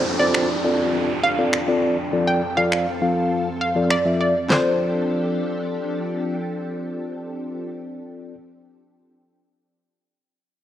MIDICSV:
0, 0, Header, 1, 6, 480
1, 0, Start_track
1, 0, Key_signature, -1, "major"
1, 0, Tempo, 594059
1, 1717, Time_signature, 4, 2, 24, 8
1, 8595, End_track
2, 0, Start_track
2, 0, Title_t, "Synth pluck"
2, 0, Program_c, 0, 84
2, 156, Note_on_c, 0, 74, 84
2, 495, Note_off_c, 0, 74, 0
2, 997, Note_on_c, 0, 77, 87
2, 1098, Note_off_c, 0, 77, 0
2, 1837, Note_on_c, 0, 79, 71
2, 1938, Note_off_c, 0, 79, 0
2, 2076, Note_on_c, 0, 77, 74
2, 2415, Note_off_c, 0, 77, 0
2, 2918, Note_on_c, 0, 77, 72
2, 3019, Note_off_c, 0, 77, 0
2, 3158, Note_on_c, 0, 74, 85
2, 3258, Note_off_c, 0, 74, 0
2, 3398, Note_on_c, 0, 74, 71
2, 3499, Note_off_c, 0, 74, 0
2, 3637, Note_on_c, 0, 72, 84
2, 5045, Note_off_c, 0, 72, 0
2, 8595, End_track
3, 0, Start_track
3, 0, Title_t, "Tine electric piano"
3, 0, Program_c, 1, 4
3, 156, Note_on_c, 1, 60, 74
3, 157, Note_on_c, 1, 65, 69
3, 158, Note_on_c, 1, 69, 68
3, 160, Note_on_c, 1, 72, 84
3, 381, Note_off_c, 1, 60, 0
3, 382, Note_off_c, 1, 65, 0
3, 382, Note_off_c, 1, 69, 0
3, 383, Note_off_c, 1, 72, 0
3, 516, Note_on_c, 1, 60, 73
3, 518, Note_on_c, 1, 65, 68
3, 519, Note_on_c, 1, 69, 66
3, 521, Note_on_c, 1, 74, 82
3, 891, Note_off_c, 1, 60, 0
3, 892, Note_off_c, 1, 65, 0
3, 892, Note_off_c, 1, 69, 0
3, 893, Note_off_c, 1, 74, 0
3, 1116, Note_on_c, 1, 60, 73
3, 1117, Note_on_c, 1, 65, 64
3, 1119, Note_on_c, 1, 69, 67
3, 1120, Note_on_c, 1, 74, 82
3, 1267, Note_off_c, 1, 60, 0
3, 1267, Note_off_c, 1, 65, 0
3, 1268, Note_off_c, 1, 69, 0
3, 1268, Note_off_c, 1, 74, 0
3, 1357, Note_on_c, 1, 60, 86
3, 1358, Note_on_c, 1, 65, 74
3, 1359, Note_on_c, 1, 69, 74
3, 1360, Note_on_c, 1, 74, 91
3, 1581, Note_off_c, 1, 60, 0
3, 1582, Note_off_c, 1, 65, 0
3, 1583, Note_off_c, 1, 69, 0
3, 1583, Note_off_c, 1, 74, 0
3, 1717, Note_on_c, 1, 53, 75
3, 1718, Note_on_c, 1, 60, 68
3, 1718, Note_on_c, 1, 65, 67
3, 1720, Note_on_c, 1, 69, 64
3, 1721, Note_on_c, 1, 74, 82
3, 1942, Note_off_c, 1, 53, 0
3, 1942, Note_off_c, 1, 60, 0
3, 1942, Note_off_c, 1, 65, 0
3, 1943, Note_off_c, 1, 69, 0
3, 1944, Note_off_c, 1, 74, 0
3, 2076, Note_on_c, 1, 53, 72
3, 2078, Note_on_c, 1, 60, 66
3, 2078, Note_on_c, 1, 65, 65
3, 2079, Note_on_c, 1, 69, 64
3, 2080, Note_on_c, 1, 74, 80
3, 2301, Note_off_c, 1, 53, 0
3, 2302, Note_off_c, 1, 60, 0
3, 2302, Note_off_c, 1, 65, 0
3, 2303, Note_off_c, 1, 69, 0
3, 2303, Note_off_c, 1, 74, 0
3, 2436, Note_on_c, 1, 53, 73
3, 2437, Note_on_c, 1, 60, 67
3, 2438, Note_on_c, 1, 65, 66
3, 2439, Note_on_c, 1, 69, 66
3, 2440, Note_on_c, 1, 77, 80
3, 2811, Note_off_c, 1, 53, 0
3, 2811, Note_off_c, 1, 60, 0
3, 2812, Note_off_c, 1, 65, 0
3, 2813, Note_off_c, 1, 69, 0
3, 2813, Note_off_c, 1, 77, 0
3, 3035, Note_on_c, 1, 53, 69
3, 3036, Note_on_c, 1, 60, 64
3, 3037, Note_on_c, 1, 65, 64
3, 3038, Note_on_c, 1, 69, 63
3, 3039, Note_on_c, 1, 74, 75
3, 3186, Note_off_c, 1, 53, 0
3, 3186, Note_off_c, 1, 60, 0
3, 3187, Note_off_c, 1, 65, 0
3, 3187, Note_off_c, 1, 69, 0
3, 3188, Note_off_c, 1, 74, 0
3, 3275, Note_on_c, 1, 53, 67
3, 3277, Note_on_c, 1, 60, 62
3, 3278, Note_on_c, 1, 65, 60
3, 3279, Note_on_c, 1, 69, 61
3, 3280, Note_on_c, 1, 76, 73
3, 3501, Note_off_c, 1, 53, 0
3, 3501, Note_off_c, 1, 60, 0
3, 3502, Note_off_c, 1, 65, 0
3, 3503, Note_off_c, 1, 69, 0
3, 3503, Note_off_c, 1, 76, 0
3, 3621, Note_on_c, 1, 60, 76
3, 3632, Note_on_c, 1, 65, 68
3, 3643, Note_on_c, 1, 69, 72
3, 3654, Note_on_c, 1, 74, 85
3, 6729, Note_off_c, 1, 60, 0
3, 6734, Note_off_c, 1, 65, 0
3, 6740, Note_off_c, 1, 69, 0
3, 6745, Note_off_c, 1, 74, 0
3, 8595, End_track
4, 0, Start_track
4, 0, Title_t, "String machine"
4, 0, Program_c, 2, 50
4, 0, Note_on_c, 2, 41, 73
4, 0, Note_on_c, 2, 53, 65
4, 0, Note_on_c, 2, 62, 66
4, 0, Note_on_c, 2, 67, 67
4, 0, Note_on_c, 2, 69, 81
4, 1698, Note_off_c, 2, 67, 0
4, 1698, Note_off_c, 2, 69, 0
4, 1699, Note_off_c, 2, 62, 0
4, 1717, Note_on_c, 2, 60, 65
4, 1718, Note_on_c, 2, 65, 68
4, 1718, Note_on_c, 2, 69, 82
4, 3605, Note_off_c, 2, 41, 0
4, 3605, Note_off_c, 2, 53, 0
4, 3618, Note_off_c, 2, 60, 0
4, 3618, Note_off_c, 2, 65, 0
4, 3618, Note_off_c, 2, 69, 0
4, 3636, Note_on_c, 2, 53, 69
4, 3636, Note_on_c, 2, 62, 63
4, 3637, Note_on_c, 2, 60, 64
4, 3637, Note_on_c, 2, 67, 65
4, 3637, Note_on_c, 2, 69, 80
4, 6170, Note_off_c, 2, 62, 0
4, 6171, Note_off_c, 2, 53, 0
4, 6171, Note_off_c, 2, 60, 0
4, 6171, Note_off_c, 2, 67, 0
4, 6171, Note_off_c, 2, 69, 0
4, 8595, End_track
5, 0, Start_track
5, 0, Title_t, "Downlifter"
5, 0, Program_c, 3, 103
5, 0, Note_on_c, 3, 60, 84
5, 3637, Note_off_c, 3, 60, 0
5, 8595, End_track
6, 0, Start_track
6, 0, Title_t, "Drums"
6, 277, Note_on_c, 9, 26, 93
6, 358, Note_off_c, 9, 26, 0
6, 1236, Note_on_c, 9, 26, 102
6, 1317, Note_off_c, 9, 26, 0
6, 2198, Note_on_c, 9, 26, 94
6, 2279, Note_off_c, 9, 26, 0
6, 3155, Note_on_c, 9, 26, 96
6, 3236, Note_off_c, 9, 26, 0
6, 3637, Note_on_c, 9, 38, 88
6, 3637, Note_on_c, 9, 39, 80
6, 3718, Note_off_c, 9, 38, 0
6, 3718, Note_off_c, 9, 39, 0
6, 8595, End_track
0, 0, End_of_file